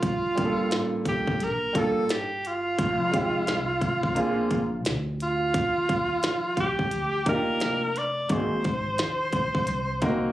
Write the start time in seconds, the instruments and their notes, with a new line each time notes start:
Already playing: alto saxophone F4
0.03 upright bass G1, kick, closed hi-hat
0.35 grand piano G3 A#3 D4 F4 G4, kick, closed hi-hat
0.45 grand piano A4
0.71 upright bass A1, snare, closed hi-hat
1.05 alto saxophone G4, kick, closed hi-hat
1.27 kick
1.40 upright bass A#1, alto saxophone A#4, closed hi-hat
1.73 grand piano G3 A#3 D4 F4 A4, kick, closed hi-hat
1.78 alto saxophone A4
2.09 upright bass G1, alto saxophone G4, snare, closed hi-hat
2.45 alto saxophone F4, closed hi-hat
2.79 upright bass F1, kick, closed hi-hat
3.11 grand piano G#3 C4 D#4 F4 G4, kick, closed hi-hat
3.47 upright bass C2, snare, closed hi-hat
3.81 kick, closed hi-hat
4.03 kick
4.15 upright bass A#1, grand piano A#3 C4 D4 F4 G#4, closed hi-hat
4.51 kick, closed hi-hat
4.85 upright bass D2, snare, closed hi-hat
5.20 alto saxophone F4, closed hi-hat
5.54 upright bass D#2, kick, closed hi-hat
5.89 kick, closed hi-hat
6.23 upright bass F2, snare, closed hi-hat
6.57 alto saxophone G4, kick, closed hi-hat
6.79 kick
6.91 upright bass D2, closed hi-hat
7.26 grand piano A#3 D4 D#4 F4 G4, alto saxophone A#4, kick, closed hi-hat
7.60 upright bass F1, snare, closed hi-hat
7.96 alto saxophone D5, closed hi-hat
8.29 upright bass G#1, grand piano A#3 C4 D#4 F#4 G#4, alto saxophone C5, kick, closed hi-hat
8.64 kick, closed hi-hat
8.98 upright bass D#2, snare, closed hi-hat
9.33 kick, closed hi-hat
9.55 kick
9.67 upright bass C2, closed hi-hat
10.02 grand piano A#3 C4 D#4 F#4 A#4, kick, closed hi-hat